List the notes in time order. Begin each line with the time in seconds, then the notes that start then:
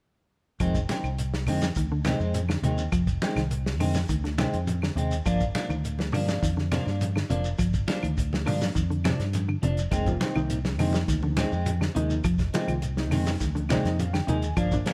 0.60 F1 D#3 F3 G#3 C4, kick, closed hi-hat, claves, shekere
0.75 kick, closed hi-hat, shekere
0.89 D#3 C4, snare, closed hi-hat, high conga, low conga
1.04 C2, claves, shekere
1.19 closed hi-hat, shekere
1.34 snare
1.46 F2 D3 D#3 G#3 C4, open hi-hat, low conga, claves, shekere
1.62 snare, closed hi-hat, high conga, shekere
1.75 D2 D#3, kick, closed hi-hat, shekere
1.92 D3
2.05 C3 D#3 G#3 C4, snare, closed hi-hat, high conga, claves, shekere
2.20 F2 G#3 C4, shekere
2.34 closed hi-hat, high conga, shekere
2.49 D3, snare, claves
2.62 D#2 C3 D#3 G#3 C4, closed hi-hat, high conga, low conga, shekere
2.78 shekere
2.92 F1 F3, kick, closed hi-hat, claves, shekere
3.07 kick, closed hi-hat, shekere
3.22 D#3 G#3 C4, snare, closed hi-hat, high conga
3.36 C2 D#3, snare, closed hi-hat, claves, shekere
3.50 closed hi-hat, shekere
3.66 snare
3.79 F2 D3 D#3 G#3 C4, open hi-hat, low conga, claves, shekere
3.94 snare, high conga, shekere
4.09 D2 D#3, kick, closed hi-hat, shekere
4.24 D3, snare, closed hi-hat
4.38 C3 D#3 G#3 C4, snare, closed hi-hat, high conga, claves, shekere
4.53 F2, closed hi-hat, shekere
4.67 closed hi-hat, high conga, shekere
4.82 D3, snare, claves
4.96 D#2 C3 G#3 C4, closed hi-hat, low conga, shekere
5.11 closed hi-hat, shekere
5.26 G1 F3 A#3 D4, kick, closed hi-hat, claves, shekere
5.41 kick, closed hi-hat, shekere
5.55 F3 A#3 D4, snare, closed hi-hat, high conga, low conga
5.69 D2 D#3, claves, shekere
5.85 closed hi-hat, shekere
5.99 snare, high conga
6.12 G2 D3 F3 A#3 D4, open hi-hat, low conga, claves, shekere
6.28 A#3 D4, snare, closed hi-hat, high conga, shekere
6.43 F2 D#3, kick, closed hi-hat, shekere
6.57 D3, snare
6.72 C3 F3 A#3 D4, snare, closed hi-hat, high conga, claves, shekere
6.86 G2 A#3 D4, snare, shekere
7.01 closed hi-hat, high conga, shekere
7.16 D3, snare, claves
7.29 F1 C3 F3 A#3 D4, closed hi-hat, high conga, low conga, shekere
7.45 shekere
7.59 G1 F3, kick, closed hi-hat, claves, shekere
7.74 kick, closed hi-hat, shekere
7.87 F3 A#3 D4, snare, closed hi-hat, high conga
8.03 D2 D#3, closed hi-hat, claves, shekere
8.17 kick, closed hi-hat, shekere
8.33 snare, high conga
8.46 G2 D3 F3 A#3 D4, open hi-hat, low conga, claves, shekere
8.61 snare, high conga, shekere
8.75 F2 D#3, kick, closed hi-hat, shekere
8.90 D3, closed hi-hat
9.04 C3 F3 D4, snare, closed hi-hat, high conga, claves, shekere
9.19 G2, snare, closed hi-hat, shekere
9.33 closed hi-hat, high conga, shekere
9.48 D3, claves
9.62 F1 C3 F3 D4, muted clean electric guitar stroke, closed hi-hat, high conga, low conga, shekere
9.77 closed hi-hat, shekere
9.91 F1 D#3 G#3 A#3 C4 D#4, muted clean electric guitar stroke, kick, closed hi-hat, claves, shekere
10.06 C3 F3 A#3 F4, kick, closed hi-hat, high conga, shekere
10.20 D#3 C4, snare, closed hi-hat, high conga, low conga
10.36 C2 C3 D#3 F3 A#3 D#4, claves, shekere
10.50 closed hi-hat, shekere
10.65 snare, high conga
10.78 F2 C3 D3 D#3 F3 G#3 A#3 C4 D#4, open hi-hat, low conga, claves, shekere
10.93 snare, closed hi-hat, high conga, shekere
11.08 D2 D#3, kick, snare, closed hi-hat, shekere
11.22 D3, high conga
11.37 D#3 G#3 C4, muted clean electric guitar stroke, snare, closed hi-hat, high conga, claves, shekere
11.52 F2 G#3 C4, shekere
11.66 closed hi-hat, high conga, shekere
11.81 D3, snare, claves
11.95 D#2 C3 D#3 F3 G#3 A#3 D#4, closed hi-hat, low conga, shekere
12.10 shekere
12.24 F1 F3, kick, closed hi-hat, claves, shekere
12.38 kick, snare, closed hi-hat, shekere
12.53 C3 D#3 F3 G#3 A#3 C4 F4, snare, closed hi-hat, high conga
12.68 C2 D#3, closed hi-hat, claves, shekere
12.82 closed hi-hat, shekere
12.97 C3 F3 A#3 D#4, snare
13.11 F2 D3 D#3 G#3 C4, snare, open hi-hat, low conga, claves, shekere
13.26 snare, high conga, shekere
13.40 D2 D#3, kick, snare, closed hi-hat, shekere
13.55 D3, closed hi-hat, high conga
13.69 C3 D#3 F3 G#3 A#3 C4 D#4 D5, snare, closed hi-hat, high conga, claves, shekere
13.85 F2 D#5, snare, closed hi-hat, shekere
13.99 F5, closed hi-hat, high conga, shekere
14.13 D3 G5, snare, claves
14.27 D#2 C3 D#3 F3 G#3 A#3 D#4 G#5, closed hi-hat, high conga, low conga, shekere
14.42 closed hi-hat, shekere
14.57 G1 F3 A#3 D4, kick, closed hi-hat, claves, shekere
14.72 C3 F3 A#3 D4, kick, closed hi-hat, shekere
14.86 F3 A#3 D4, snare, closed hi-hat, high conga